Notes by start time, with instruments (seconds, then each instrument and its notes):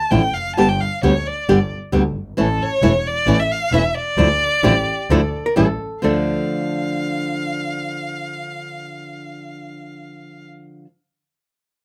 Already playing: violin A5
0.11 double bass A1, nylon-string guitar D3 F3 A3 D4 E4, violin G5
0.34 double bass F1, violin F5
0.56 double bass G1, nylon-string guitar D3 G3 B3 G4, violin A5
0.69 violin G5
0.81 violin F5
1.03 double bass D2, nylon-string guitar D3 G3 B3 G4, violin C#5
1.27 violin D5
1.49 double bass G1, nylon-string guitar D3 G3 B3 G4
1.92 double bass D2, nylon-string guitar D3 G3 B3 G4
2.15 double bass G1
2.37 double bass A1, nylon-string guitar E3 A3 C#4 E4, violin A4
2.63 violin C#5
2.82 double bass E1, nylon-string guitar E3 A3 C#4 E4
3.07 violin D5
3.27 double bass A1, nylon-string guitar E3 A3 C#4 E4
3.40 violin E5
3.52 violin F5
3.72 double bass E1, nylon-string guitar E3 A3 C#4 E4, violin E5
3.95 violin D5
4.17 double bass D2, nylon-string guitar D3 F3 A3 D4 E4
4.63 double bass A1, nylon-string guitar D3 F3 A3 D4 E4, hollow-body jazz guitar G4
5.10 double bass D2, nylon-string guitar D3 F3 A3 D4 E4, hollow-body jazz guitar A4
5.46 hollow-body jazz guitar A#4
5.56 double bass A1, nylon-string guitar E3 G3 C#4 E4, hollow-body jazz guitar A4
6.02 double bass D2, nylon-string guitar D3 F3 A3 D4, hollow-body jazz guitar A4, violin F5